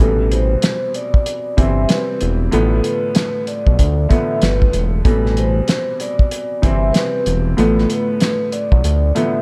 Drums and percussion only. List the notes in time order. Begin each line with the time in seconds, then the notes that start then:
0.00 kick, closed hi-hat
0.31 closed hi-hat
0.62 snare, closed hi-hat
0.94 closed hi-hat
1.14 kick
1.26 closed hi-hat
1.58 kick, closed hi-hat
1.89 snare, closed hi-hat
2.21 closed hi-hat
2.52 closed hi-hat
2.84 closed hi-hat
3.15 snare, closed hi-hat
3.47 closed hi-hat
3.67 kick
3.79 kick, closed hi-hat
4.11 kick, closed hi-hat
4.42 snare, closed hi-hat
4.62 kick
4.73 closed hi-hat
5.05 kick, closed hi-hat
5.26 snare
5.37 closed hi-hat
5.68 snare, closed hi-hat
6.00 closed hi-hat
6.19 kick
6.31 closed hi-hat
6.63 kick, closed hi-hat
6.94 snare, closed hi-hat
7.26 closed hi-hat
7.58 closed hi-hat
7.79 snare
7.90 closed hi-hat
8.20 snare, closed hi-hat
8.52 closed hi-hat
8.72 kick
8.84 closed hi-hat
9.16 closed hi-hat